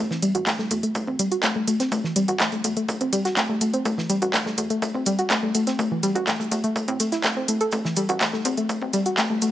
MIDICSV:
0, 0, Header, 1, 4, 480
1, 0, Start_track
1, 0, Tempo, 483871
1, 1905, Time_signature, 4, 2, 24, 8
1, 9438, End_track
2, 0, Start_track
2, 0, Title_t, "Synth arpeggio sound"
2, 0, Program_c, 0, 84
2, 106, Note_on_c, 0, 52, 75
2, 163, Note_off_c, 0, 52, 0
2, 224, Note_on_c, 0, 55, 98
2, 283, Note_off_c, 0, 55, 0
2, 347, Note_on_c, 0, 66, 76
2, 381, Note_off_c, 0, 66, 0
2, 464, Note_on_c, 0, 57, 84
2, 523, Note_off_c, 0, 57, 0
2, 587, Note_on_c, 0, 57, 74
2, 643, Note_off_c, 0, 57, 0
2, 704, Note_on_c, 0, 57, 79
2, 763, Note_off_c, 0, 57, 0
2, 826, Note_on_c, 0, 57, 78
2, 883, Note_off_c, 0, 57, 0
2, 944, Note_on_c, 0, 57, 80
2, 1003, Note_off_c, 0, 57, 0
2, 1066, Note_on_c, 0, 60, 73
2, 1152, Note_off_c, 0, 60, 0
2, 1184, Note_on_c, 0, 55, 101
2, 1243, Note_off_c, 0, 55, 0
2, 1305, Note_on_c, 0, 66, 75
2, 1340, Note_off_c, 0, 66, 0
2, 1423, Note_on_c, 0, 57, 90
2, 1483, Note_off_c, 0, 57, 0
2, 1545, Note_on_c, 0, 57, 75
2, 1603, Note_off_c, 0, 57, 0
2, 1662, Note_on_c, 0, 57, 79
2, 1723, Note_off_c, 0, 57, 0
2, 1786, Note_on_c, 0, 60, 80
2, 1820, Note_off_c, 0, 60, 0
2, 1903, Note_on_c, 0, 57, 84
2, 1963, Note_off_c, 0, 57, 0
2, 2025, Note_on_c, 0, 52, 76
2, 2083, Note_off_c, 0, 52, 0
2, 2142, Note_on_c, 0, 55, 102
2, 2203, Note_off_c, 0, 55, 0
2, 2265, Note_on_c, 0, 66, 75
2, 2300, Note_off_c, 0, 66, 0
2, 2382, Note_on_c, 0, 57, 80
2, 2443, Note_off_c, 0, 57, 0
2, 2505, Note_on_c, 0, 57, 69
2, 2563, Note_off_c, 0, 57, 0
2, 2622, Note_on_c, 0, 57, 75
2, 2682, Note_off_c, 0, 57, 0
2, 2745, Note_on_c, 0, 57, 80
2, 2802, Note_off_c, 0, 57, 0
2, 2861, Note_on_c, 0, 57, 78
2, 2922, Note_off_c, 0, 57, 0
2, 2984, Note_on_c, 0, 60, 77
2, 3070, Note_off_c, 0, 60, 0
2, 3102, Note_on_c, 0, 55, 106
2, 3162, Note_off_c, 0, 55, 0
2, 3225, Note_on_c, 0, 66, 77
2, 3260, Note_off_c, 0, 66, 0
2, 3342, Note_on_c, 0, 57, 83
2, 3402, Note_off_c, 0, 57, 0
2, 3464, Note_on_c, 0, 57, 78
2, 3522, Note_off_c, 0, 57, 0
2, 3583, Note_on_c, 0, 57, 72
2, 3643, Note_off_c, 0, 57, 0
2, 3705, Note_on_c, 0, 60, 77
2, 3740, Note_off_c, 0, 60, 0
2, 3822, Note_on_c, 0, 57, 79
2, 3882, Note_off_c, 0, 57, 0
2, 3946, Note_on_c, 0, 52, 75
2, 4003, Note_off_c, 0, 52, 0
2, 4062, Note_on_c, 0, 55, 104
2, 4122, Note_off_c, 0, 55, 0
2, 4185, Note_on_c, 0, 66, 75
2, 4220, Note_off_c, 0, 66, 0
2, 4302, Note_on_c, 0, 57, 82
2, 4362, Note_off_c, 0, 57, 0
2, 4425, Note_on_c, 0, 57, 73
2, 4482, Note_off_c, 0, 57, 0
2, 4542, Note_on_c, 0, 57, 73
2, 4602, Note_off_c, 0, 57, 0
2, 4665, Note_on_c, 0, 57, 79
2, 4723, Note_off_c, 0, 57, 0
2, 4783, Note_on_c, 0, 57, 78
2, 4843, Note_off_c, 0, 57, 0
2, 4905, Note_on_c, 0, 60, 80
2, 4991, Note_off_c, 0, 60, 0
2, 5023, Note_on_c, 0, 55, 110
2, 5083, Note_off_c, 0, 55, 0
2, 5145, Note_on_c, 0, 66, 75
2, 5180, Note_off_c, 0, 66, 0
2, 5263, Note_on_c, 0, 57, 86
2, 5323, Note_off_c, 0, 57, 0
2, 5386, Note_on_c, 0, 57, 75
2, 5443, Note_off_c, 0, 57, 0
2, 5504, Note_on_c, 0, 57, 76
2, 5563, Note_off_c, 0, 57, 0
2, 5626, Note_on_c, 0, 60, 78
2, 5660, Note_off_c, 0, 60, 0
2, 5744, Note_on_c, 0, 57, 83
2, 5803, Note_off_c, 0, 57, 0
2, 5867, Note_on_c, 0, 52, 77
2, 5923, Note_off_c, 0, 52, 0
2, 5983, Note_on_c, 0, 55, 102
2, 6043, Note_off_c, 0, 55, 0
2, 6106, Note_on_c, 0, 66, 81
2, 6140, Note_off_c, 0, 66, 0
2, 6223, Note_on_c, 0, 57, 82
2, 6283, Note_off_c, 0, 57, 0
2, 6346, Note_on_c, 0, 57, 72
2, 6403, Note_off_c, 0, 57, 0
2, 6463, Note_on_c, 0, 57, 78
2, 6523, Note_off_c, 0, 57, 0
2, 6586, Note_on_c, 0, 57, 79
2, 6643, Note_off_c, 0, 57, 0
2, 6703, Note_on_c, 0, 57, 81
2, 6763, Note_off_c, 0, 57, 0
2, 6826, Note_on_c, 0, 60, 81
2, 6912, Note_off_c, 0, 60, 0
2, 6944, Note_on_c, 0, 57, 77
2, 7003, Note_off_c, 0, 57, 0
2, 7066, Note_on_c, 0, 64, 77
2, 7123, Note_off_c, 0, 64, 0
2, 7183, Note_on_c, 0, 57, 82
2, 7243, Note_off_c, 0, 57, 0
2, 7306, Note_on_c, 0, 60, 77
2, 7392, Note_off_c, 0, 60, 0
2, 7423, Note_on_c, 0, 57, 79
2, 7459, Note_off_c, 0, 57, 0
2, 7546, Note_on_c, 0, 69, 78
2, 7581, Note_off_c, 0, 69, 0
2, 7663, Note_on_c, 0, 57, 84
2, 7723, Note_off_c, 0, 57, 0
2, 7786, Note_on_c, 0, 52, 79
2, 7843, Note_off_c, 0, 52, 0
2, 7903, Note_on_c, 0, 55, 102
2, 7963, Note_off_c, 0, 55, 0
2, 8025, Note_on_c, 0, 66, 74
2, 8060, Note_off_c, 0, 66, 0
2, 8143, Note_on_c, 0, 57, 79
2, 8203, Note_off_c, 0, 57, 0
2, 8266, Note_on_c, 0, 57, 79
2, 8323, Note_off_c, 0, 57, 0
2, 8384, Note_on_c, 0, 60, 78
2, 8473, Note_off_c, 0, 60, 0
2, 8506, Note_on_c, 0, 57, 78
2, 8563, Note_off_c, 0, 57, 0
2, 8624, Note_on_c, 0, 57, 82
2, 8683, Note_off_c, 0, 57, 0
2, 8746, Note_on_c, 0, 60, 76
2, 8832, Note_off_c, 0, 60, 0
2, 8863, Note_on_c, 0, 55, 105
2, 8923, Note_off_c, 0, 55, 0
2, 8986, Note_on_c, 0, 66, 75
2, 9021, Note_off_c, 0, 66, 0
2, 9103, Note_on_c, 0, 57, 87
2, 9163, Note_off_c, 0, 57, 0
2, 9226, Note_on_c, 0, 57, 79
2, 9283, Note_off_c, 0, 57, 0
2, 9344, Note_on_c, 0, 57, 77
2, 9403, Note_off_c, 0, 57, 0
2, 9438, End_track
3, 0, Start_track
3, 0, Title_t, "Analog synth bass"
3, 0, Program_c, 1, 38
3, 346, Note_on_c, 1, 33, 82
3, 444, Note_off_c, 1, 33, 0
3, 704, Note_on_c, 1, 40, 80
3, 806, Note_off_c, 1, 40, 0
3, 1066, Note_on_c, 1, 33, 82
3, 1164, Note_off_c, 1, 33, 0
3, 1423, Note_on_c, 1, 33, 99
3, 1753, Note_off_c, 1, 33, 0
3, 1903, Note_on_c, 1, 33, 94
3, 2006, Note_off_c, 1, 33, 0
3, 2264, Note_on_c, 1, 33, 81
3, 2363, Note_off_c, 1, 33, 0
3, 2623, Note_on_c, 1, 40, 78
3, 2726, Note_off_c, 1, 40, 0
3, 2986, Note_on_c, 1, 33, 80
3, 3084, Note_off_c, 1, 33, 0
3, 3344, Note_on_c, 1, 33, 104
3, 3674, Note_off_c, 1, 33, 0
3, 3823, Note_on_c, 1, 33, 92
3, 3926, Note_off_c, 1, 33, 0
3, 4185, Note_on_c, 1, 33, 87
3, 4284, Note_off_c, 1, 33, 0
3, 4543, Note_on_c, 1, 40, 78
3, 4646, Note_off_c, 1, 40, 0
3, 4906, Note_on_c, 1, 33, 78
3, 5004, Note_off_c, 1, 33, 0
3, 5264, Note_on_c, 1, 33, 100
3, 5594, Note_off_c, 1, 33, 0
3, 5743, Note_on_c, 1, 33, 96
3, 5846, Note_off_c, 1, 33, 0
3, 6104, Note_on_c, 1, 33, 85
3, 6203, Note_off_c, 1, 33, 0
3, 6462, Note_on_c, 1, 40, 81
3, 6565, Note_off_c, 1, 40, 0
3, 6826, Note_on_c, 1, 45, 94
3, 6924, Note_off_c, 1, 45, 0
3, 7184, Note_on_c, 1, 28, 91
3, 7514, Note_off_c, 1, 28, 0
3, 7664, Note_on_c, 1, 33, 96
3, 7766, Note_off_c, 1, 33, 0
3, 8025, Note_on_c, 1, 33, 86
3, 8124, Note_off_c, 1, 33, 0
3, 8384, Note_on_c, 1, 40, 83
3, 8486, Note_off_c, 1, 40, 0
3, 8746, Note_on_c, 1, 33, 82
3, 8844, Note_off_c, 1, 33, 0
3, 9104, Note_on_c, 1, 33, 103
3, 9434, Note_off_c, 1, 33, 0
3, 9438, End_track
4, 0, Start_track
4, 0, Title_t, "Drums"
4, 107, Note_on_c, 9, 38, 50
4, 206, Note_off_c, 9, 38, 0
4, 223, Note_on_c, 9, 42, 99
4, 228, Note_on_c, 9, 82, 64
4, 322, Note_off_c, 9, 42, 0
4, 327, Note_off_c, 9, 82, 0
4, 346, Note_on_c, 9, 42, 48
4, 445, Note_off_c, 9, 42, 0
4, 463, Note_on_c, 9, 39, 106
4, 463, Note_on_c, 9, 42, 32
4, 464, Note_on_c, 9, 36, 106
4, 466, Note_on_c, 9, 82, 79
4, 471, Note_on_c, 9, 38, 111
4, 562, Note_off_c, 9, 39, 0
4, 562, Note_off_c, 9, 42, 0
4, 563, Note_off_c, 9, 36, 0
4, 565, Note_off_c, 9, 82, 0
4, 570, Note_off_c, 9, 38, 0
4, 580, Note_on_c, 9, 38, 47
4, 680, Note_off_c, 9, 38, 0
4, 703, Note_on_c, 9, 42, 98
4, 706, Note_on_c, 9, 82, 62
4, 802, Note_off_c, 9, 42, 0
4, 805, Note_off_c, 9, 82, 0
4, 826, Note_on_c, 9, 42, 46
4, 925, Note_off_c, 9, 42, 0
4, 943, Note_on_c, 9, 36, 110
4, 943, Note_on_c, 9, 42, 34
4, 943, Note_on_c, 9, 82, 98
4, 1042, Note_off_c, 9, 42, 0
4, 1042, Note_off_c, 9, 82, 0
4, 1043, Note_off_c, 9, 36, 0
4, 1066, Note_on_c, 9, 45, 82
4, 1165, Note_off_c, 9, 45, 0
4, 1183, Note_on_c, 9, 42, 103
4, 1183, Note_on_c, 9, 82, 70
4, 1282, Note_off_c, 9, 42, 0
4, 1282, Note_off_c, 9, 82, 0
4, 1305, Note_on_c, 9, 42, 46
4, 1404, Note_off_c, 9, 42, 0
4, 1413, Note_on_c, 9, 38, 101
4, 1419, Note_on_c, 9, 82, 83
4, 1422, Note_on_c, 9, 39, 124
4, 1422, Note_on_c, 9, 42, 36
4, 1423, Note_on_c, 9, 36, 116
4, 1512, Note_off_c, 9, 38, 0
4, 1518, Note_off_c, 9, 82, 0
4, 1521, Note_off_c, 9, 39, 0
4, 1521, Note_off_c, 9, 42, 0
4, 1522, Note_off_c, 9, 36, 0
4, 1662, Note_on_c, 9, 42, 108
4, 1662, Note_on_c, 9, 45, 74
4, 1663, Note_on_c, 9, 82, 63
4, 1761, Note_off_c, 9, 42, 0
4, 1761, Note_off_c, 9, 45, 0
4, 1762, Note_off_c, 9, 82, 0
4, 1784, Note_on_c, 9, 38, 54
4, 1786, Note_on_c, 9, 42, 58
4, 1883, Note_off_c, 9, 38, 0
4, 1885, Note_off_c, 9, 42, 0
4, 1902, Note_on_c, 9, 42, 33
4, 1903, Note_on_c, 9, 36, 114
4, 1905, Note_on_c, 9, 82, 87
4, 2001, Note_off_c, 9, 42, 0
4, 2002, Note_off_c, 9, 36, 0
4, 2004, Note_off_c, 9, 82, 0
4, 2026, Note_on_c, 9, 38, 36
4, 2126, Note_off_c, 9, 38, 0
4, 2142, Note_on_c, 9, 42, 104
4, 2148, Note_on_c, 9, 82, 64
4, 2241, Note_off_c, 9, 42, 0
4, 2247, Note_off_c, 9, 82, 0
4, 2264, Note_on_c, 9, 42, 45
4, 2363, Note_off_c, 9, 42, 0
4, 2382, Note_on_c, 9, 38, 113
4, 2382, Note_on_c, 9, 39, 119
4, 2382, Note_on_c, 9, 42, 29
4, 2383, Note_on_c, 9, 36, 109
4, 2387, Note_on_c, 9, 82, 79
4, 2481, Note_off_c, 9, 38, 0
4, 2481, Note_off_c, 9, 39, 0
4, 2481, Note_off_c, 9, 42, 0
4, 2483, Note_off_c, 9, 36, 0
4, 2486, Note_off_c, 9, 82, 0
4, 2500, Note_on_c, 9, 42, 46
4, 2504, Note_on_c, 9, 45, 76
4, 2599, Note_off_c, 9, 42, 0
4, 2603, Note_off_c, 9, 45, 0
4, 2621, Note_on_c, 9, 42, 106
4, 2626, Note_on_c, 9, 82, 66
4, 2720, Note_off_c, 9, 42, 0
4, 2725, Note_off_c, 9, 82, 0
4, 2744, Note_on_c, 9, 42, 42
4, 2844, Note_off_c, 9, 42, 0
4, 2862, Note_on_c, 9, 42, 31
4, 2863, Note_on_c, 9, 36, 117
4, 2871, Note_on_c, 9, 82, 89
4, 2961, Note_off_c, 9, 42, 0
4, 2963, Note_off_c, 9, 36, 0
4, 2971, Note_off_c, 9, 82, 0
4, 2984, Note_on_c, 9, 42, 60
4, 3083, Note_off_c, 9, 42, 0
4, 3102, Note_on_c, 9, 42, 108
4, 3102, Note_on_c, 9, 45, 88
4, 3103, Note_on_c, 9, 82, 70
4, 3201, Note_off_c, 9, 42, 0
4, 3201, Note_off_c, 9, 45, 0
4, 3202, Note_off_c, 9, 82, 0
4, 3226, Note_on_c, 9, 38, 43
4, 3226, Note_on_c, 9, 42, 45
4, 3325, Note_off_c, 9, 42, 0
4, 3326, Note_off_c, 9, 38, 0
4, 3340, Note_on_c, 9, 82, 74
4, 3342, Note_on_c, 9, 38, 113
4, 3343, Note_on_c, 9, 36, 122
4, 3343, Note_on_c, 9, 39, 123
4, 3343, Note_on_c, 9, 42, 35
4, 3439, Note_off_c, 9, 82, 0
4, 3441, Note_off_c, 9, 38, 0
4, 3442, Note_off_c, 9, 39, 0
4, 3442, Note_off_c, 9, 42, 0
4, 3443, Note_off_c, 9, 36, 0
4, 3580, Note_on_c, 9, 82, 63
4, 3582, Note_on_c, 9, 42, 111
4, 3582, Note_on_c, 9, 45, 77
4, 3679, Note_off_c, 9, 82, 0
4, 3682, Note_off_c, 9, 42, 0
4, 3682, Note_off_c, 9, 45, 0
4, 3706, Note_on_c, 9, 42, 45
4, 3805, Note_off_c, 9, 42, 0
4, 3823, Note_on_c, 9, 42, 33
4, 3824, Note_on_c, 9, 36, 122
4, 3824, Note_on_c, 9, 82, 88
4, 3922, Note_off_c, 9, 42, 0
4, 3923, Note_off_c, 9, 36, 0
4, 3923, Note_off_c, 9, 82, 0
4, 3949, Note_on_c, 9, 38, 55
4, 4048, Note_off_c, 9, 38, 0
4, 4062, Note_on_c, 9, 82, 67
4, 4063, Note_on_c, 9, 42, 109
4, 4161, Note_off_c, 9, 82, 0
4, 4163, Note_off_c, 9, 42, 0
4, 4186, Note_on_c, 9, 42, 45
4, 4285, Note_off_c, 9, 42, 0
4, 4303, Note_on_c, 9, 39, 109
4, 4303, Note_on_c, 9, 42, 30
4, 4304, Note_on_c, 9, 36, 115
4, 4304, Note_on_c, 9, 38, 105
4, 4307, Note_on_c, 9, 82, 78
4, 4402, Note_off_c, 9, 39, 0
4, 4402, Note_off_c, 9, 42, 0
4, 4403, Note_off_c, 9, 36, 0
4, 4403, Note_off_c, 9, 38, 0
4, 4407, Note_off_c, 9, 82, 0
4, 4425, Note_on_c, 9, 38, 49
4, 4525, Note_off_c, 9, 38, 0
4, 4539, Note_on_c, 9, 82, 69
4, 4542, Note_on_c, 9, 42, 111
4, 4638, Note_off_c, 9, 82, 0
4, 4641, Note_off_c, 9, 42, 0
4, 4665, Note_on_c, 9, 42, 44
4, 4764, Note_off_c, 9, 42, 0
4, 4783, Note_on_c, 9, 42, 31
4, 4784, Note_on_c, 9, 36, 117
4, 4789, Note_on_c, 9, 82, 100
4, 4882, Note_off_c, 9, 42, 0
4, 4883, Note_off_c, 9, 36, 0
4, 4889, Note_off_c, 9, 82, 0
4, 4905, Note_on_c, 9, 45, 83
4, 5004, Note_off_c, 9, 45, 0
4, 5017, Note_on_c, 9, 82, 65
4, 5022, Note_on_c, 9, 42, 114
4, 5116, Note_off_c, 9, 82, 0
4, 5122, Note_off_c, 9, 42, 0
4, 5145, Note_on_c, 9, 42, 43
4, 5245, Note_off_c, 9, 42, 0
4, 5255, Note_on_c, 9, 38, 104
4, 5260, Note_on_c, 9, 82, 81
4, 5263, Note_on_c, 9, 39, 114
4, 5263, Note_on_c, 9, 42, 34
4, 5264, Note_on_c, 9, 36, 126
4, 5354, Note_off_c, 9, 38, 0
4, 5359, Note_off_c, 9, 82, 0
4, 5362, Note_off_c, 9, 39, 0
4, 5362, Note_off_c, 9, 42, 0
4, 5363, Note_off_c, 9, 36, 0
4, 5499, Note_on_c, 9, 82, 78
4, 5502, Note_on_c, 9, 42, 114
4, 5502, Note_on_c, 9, 45, 77
4, 5598, Note_off_c, 9, 82, 0
4, 5602, Note_off_c, 9, 42, 0
4, 5602, Note_off_c, 9, 45, 0
4, 5625, Note_on_c, 9, 42, 60
4, 5629, Note_on_c, 9, 38, 50
4, 5725, Note_off_c, 9, 42, 0
4, 5728, Note_off_c, 9, 38, 0
4, 5743, Note_on_c, 9, 36, 120
4, 5743, Note_on_c, 9, 42, 32
4, 5750, Note_on_c, 9, 82, 65
4, 5843, Note_off_c, 9, 36, 0
4, 5843, Note_off_c, 9, 42, 0
4, 5849, Note_off_c, 9, 82, 0
4, 5981, Note_on_c, 9, 82, 68
4, 5984, Note_on_c, 9, 42, 110
4, 6080, Note_off_c, 9, 82, 0
4, 6083, Note_off_c, 9, 42, 0
4, 6106, Note_on_c, 9, 42, 41
4, 6206, Note_off_c, 9, 42, 0
4, 6223, Note_on_c, 9, 36, 113
4, 6223, Note_on_c, 9, 82, 94
4, 6224, Note_on_c, 9, 38, 104
4, 6225, Note_on_c, 9, 39, 111
4, 6225, Note_on_c, 9, 42, 29
4, 6323, Note_off_c, 9, 36, 0
4, 6323, Note_off_c, 9, 38, 0
4, 6323, Note_off_c, 9, 82, 0
4, 6324, Note_off_c, 9, 39, 0
4, 6324, Note_off_c, 9, 42, 0
4, 6347, Note_on_c, 9, 45, 88
4, 6354, Note_on_c, 9, 42, 48
4, 6446, Note_off_c, 9, 45, 0
4, 6453, Note_off_c, 9, 42, 0
4, 6463, Note_on_c, 9, 42, 98
4, 6464, Note_on_c, 9, 82, 73
4, 6562, Note_off_c, 9, 42, 0
4, 6564, Note_off_c, 9, 82, 0
4, 6585, Note_on_c, 9, 42, 42
4, 6685, Note_off_c, 9, 42, 0
4, 6703, Note_on_c, 9, 42, 32
4, 6704, Note_on_c, 9, 36, 119
4, 6711, Note_on_c, 9, 82, 79
4, 6802, Note_off_c, 9, 42, 0
4, 6803, Note_off_c, 9, 36, 0
4, 6810, Note_off_c, 9, 82, 0
4, 6825, Note_on_c, 9, 42, 61
4, 6924, Note_off_c, 9, 42, 0
4, 6942, Note_on_c, 9, 82, 67
4, 6943, Note_on_c, 9, 42, 113
4, 6943, Note_on_c, 9, 45, 101
4, 7041, Note_off_c, 9, 82, 0
4, 7042, Note_off_c, 9, 42, 0
4, 7042, Note_off_c, 9, 45, 0
4, 7062, Note_on_c, 9, 38, 43
4, 7065, Note_on_c, 9, 42, 43
4, 7162, Note_off_c, 9, 38, 0
4, 7164, Note_off_c, 9, 42, 0
4, 7175, Note_on_c, 9, 82, 81
4, 7183, Note_on_c, 9, 36, 123
4, 7183, Note_on_c, 9, 39, 111
4, 7183, Note_on_c, 9, 42, 34
4, 7188, Note_on_c, 9, 38, 112
4, 7274, Note_off_c, 9, 82, 0
4, 7282, Note_off_c, 9, 39, 0
4, 7282, Note_off_c, 9, 42, 0
4, 7283, Note_off_c, 9, 36, 0
4, 7287, Note_off_c, 9, 38, 0
4, 7422, Note_on_c, 9, 82, 64
4, 7423, Note_on_c, 9, 42, 115
4, 7423, Note_on_c, 9, 45, 83
4, 7521, Note_off_c, 9, 82, 0
4, 7522, Note_off_c, 9, 42, 0
4, 7522, Note_off_c, 9, 45, 0
4, 7546, Note_on_c, 9, 42, 44
4, 7645, Note_off_c, 9, 42, 0
4, 7656, Note_on_c, 9, 82, 78
4, 7663, Note_on_c, 9, 36, 120
4, 7663, Note_on_c, 9, 42, 33
4, 7755, Note_off_c, 9, 82, 0
4, 7762, Note_off_c, 9, 42, 0
4, 7763, Note_off_c, 9, 36, 0
4, 7785, Note_on_c, 9, 38, 51
4, 7884, Note_off_c, 9, 38, 0
4, 7897, Note_on_c, 9, 82, 67
4, 7902, Note_on_c, 9, 42, 99
4, 7996, Note_off_c, 9, 82, 0
4, 8002, Note_off_c, 9, 42, 0
4, 8025, Note_on_c, 9, 42, 44
4, 8124, Note_off_c, 9, 42, 0
4, 8143, Note_on_c, 9, 36, 114
4, 8143, Note_on_c, 9, 39, 100
4, 8143, Note_on_c, 9, 42, 28
4, 8144, Note_on_c, 9, 82, 81
4, 8146, Note_on_c, 9, 38, 109
4, 8243, Note_off_c, 9, 36, 0
4, 8243, Note_off_c, 9, 39, 0
4, 8243, Note_off_c, 9, 42, 0
4, 8244, Note_off_c, 9, 82, 0
4, 8245, Note_off_c, 9, 38, 0
4, 8267, Note_on_c, 9, 38, 44
4, 8366, Note_off_c, 9, 38, 0
4, 8383, Note_on_c, 9, 42, 103
4, 8385, Note_on_c, 9, 82, 70
4, 8482, Note_off_c, 9, 42, 0
4, 8484, Note_off_c, 9, 82, 0
4, 8506, Note_on_c, 9, 42, 42
4, 8605, Note_off_c, 9, 42, 0
4, 8623, Note_on_c, 9, 36, 109
4, 8624, Note_on_c, 9, 82, 84
4, 8625, Note_on_c, 9, 42, 33
4, 8723, Note_off_c, 9, 36, 0
4, 8723, Note_off_c, 9, 82, 0
4, 8724, Note_off_c, 9, 42, 0
4, 8746, Note_on_c, 9, 45, 93
4, 8845, Note_off_c, 9, 45, 0
4, 8861, Note_on_c, 9, 82, 62
4, 8863, Note_on_c, 9, 42, 106
4, 8960, Note_off_c, 9, 82, 0
4, 8962, Note_off_c, 9, 42, 0
4, 8986, Note_on_c, 9, 42, 42
4, 9085, Note_off_c, 9, 42, 0
4, 9101, Note_on_c, 9, 38, 105
4, 9103, Note_on_c, 9, 39, 121
4, 9103, Note_on_c, 9, 42, 35
4, 9104, Note_on_c, 9, 36, 118
4, 9106, Note_on_c, 9, 82, 90
4, 9200, Note_off_c, 9, 38, 0
4, 9202, Note_off_c, 9, 39, 0
4, 9202, Note_off_c, 9, 42, 0
4, 9203, Note_off_c, 9, 36, 0
4, 9205, Note_off_c, 9, 82, 0
4, 9339, Note_on_c, 9, 82, 67
4, 9344, Note_on_c, 9, 42, 105
4, 9344, Note_on_c, 9, 45, 83
4, 9438, Note_off_c, 9, 42, 0
4, 9438, Note_off_c, 9, 45, 0
4, 9438, Note_off_c, 9, 82, 0
4, 9438, End_track
0, 0, End_of_file